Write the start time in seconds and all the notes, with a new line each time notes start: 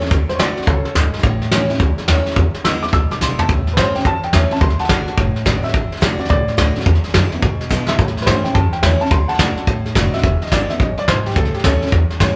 Already playing: A4
0.01 C#4 E4, snare
0.06 snare
0.11 D2 D3, kick, snare
0.29 C5, snare
0.35 B1 D3 A3 C#5, snare, hi-hat pedal
0.40 D4 F#4 D5
0.57 D4 F#4, muted upright bass stroke, snare
0.62 snare
0.67 C#2 C#3 A4, kick, snare
0.85 A4, muted upright bass stroke, snare
0.95 D2 G#2, snare, hi-hat pedal
1.13 muted upright bass stroke, snare
1.19 snare
1.23 A1 A2, kick, snare
1.41 muted upright bass stroke, snare
1.51 C#2 E3 A3 C#4 E4, snare, hi-hat pedal
1.69 C#4 E4, muted upright bass stroke, snare
1.75 snare
1.80 D2 E2, kick, snare
1.98 snare
2.08 D#2 E3 A3 C#4 E4, snare, hi-hat pedal
2.26 muted upright bass stroke, snare
2.31 snare
2.36 E2, kick, snare
2.54 muted upright bass stroke, snare
2.64 B1 D3 G#3 B3 E4 E6, snare, hi-hat pedal
2.82 B3 E4 D6, muted upright bass stroke, snare
2.88 snare
2.93 D2 B2 E6, kick, snare
3.11 D6, snare
3.21 B1 D3 G#3 B3 E4 C6, snare, hi-hat pedal
3.39 B3 E4 A5, floor tom
3.49 C#2 A2, kick, snare
3.67 muted upright bass stroke, snare
3.73 G#2 E3 B4, kick, snare, hi-hat pedal
3.78 A3 C#4 E4 C5
3.95 C#4 E4 G5, muted upright bass stroke, snare
4.00 snare
4.05 E2 F#2 A5, kick, snare
4.23 G5, muted upright bass stroke, snare
4.33 E2 E3 A3 C#4 E4 E5, kick, snare, hi-hat pedal
4.51 C#4 E4 A5, muted upright bass stroke, snare
4.56 snare
4.61 D2 D3 C6, kick, snare
4.70 snare
4.79 F#5 A5, snare
4.85 snare
4.89 A1 D3 A3 D4 F#4, kick, snare, hi-hat pedal
5.07 D4 F#4, muted upright bass stroke, snare
5.17 F#1 A2, kick, snare
5.36 snare
5.45 G#1 D3 A3 D4 F#4, kick, snare, hi-hat pedal
5.59 F#4 D#5
5.64 D4 E5, muted upright bass stroke, snare
5.69 snare
5.74 A1 D3, kick, snare
5.92 muted upright bass stroke, snare
5.97 snare
6.01 B1 D3 A3 D4 F#4 D5, kick, snare, hi-hat pedal
6.19 D4 F#4 D5, muted upright bass stroke, snare
6.25 A2, snare
6.30 C#2 D5, kick, snare
6.48 muted upright bass stroke, snare
6.57 D2 D3 A3 D4 F#4, kick, snare, hi-hat pedal
6.76 D4 F#4, snare
6.81 snare
6.86 E2, kick, snare
6.95 snare
7.04 muted upright bass stroke, snare
7.09 snare
7.14 F#2 D3 G#3 B3 E4, kick, snare, hi-hat pedal
7.32 B3 E4, muted upright bass stroke, snare
7.42 G#2 B2, kick, snare
7.60 muted upright bass stroke, snare
7.69 B2 D3 G#3 B3 E4, kick, snare, hi-hat pedal
7.84 E4 D#5
7.88 B3 E5, muted upright bass stroke, snare
7.99 A2, kick, snare
8.08 snare
8.16 muted upright bass stroke, snare
8.22 B4, snare
8.26 G#2 E3 A3 C#4 E4 C5, kick, snare, hi-hat pedal
8.44 C#4 E4 G5, muted upright bass stroke, snare
8.54 E2 F#2 A5, kick, snare
8.73 G5, muted upright bass stroke, snare
8.83 E2 E3 A3 C#4 E4 E5, kick, snare, hi-hat pedal
9.01 C#4 E4 A5, muted upright bass stroke, snare
9.06 snare
9.11 D2 D3 C6, kick, snare
9.28 F#5 A5, muted upright bass stroke, snare
9.34 snare
9.39 B1 D3 A3 D4 F#4, kick, snare, hi-hat pedal
9.57 D4 F#4, muted upright bass stroke, snare
9.67 A2, kick, snare
9.86 snare
9.95 F#1 D3 A3 D4 F#4, kick, snare, hi-hat pedal
10.09 D#5
10.14 D4 F#4 E5, snare
10.19 snare
10.23 E1 E2 E5, kick, snare
10.42 D#5, snare
10.47 snare
10.52 G#1 D3 G#3 B3 E4 D5, kick, snare, hi-hat pedal
10.70 B3 E4 E5, muted upright bass stroke, snare
10.80 A1 F#2 D#5, kick, snare
10.97 D5, muted upright bass stroke, snare
11.08 B1 G#2 C5, kick, snare, hi-hat pedal
11.26 G4, muted upright bass stroke, snare
11.31 snare
11.36 C#2 A2 A4, kick, snare
11.45 snare
11.54 G4, muted upright bass stroke, snare
11.59 snare
11.64 D2 E3 A3 C#4 E4 A4, kick, snare, hi-hat pedal
11.82 C#4 E4, muted upright bass stroke, snare
11.87 snare
11.92 E2, kick, snare
12.10 muted upright bass stroke, snare
12.20 G#2 E3 A3 C#4 E4, kick, snare, hi-hat pedal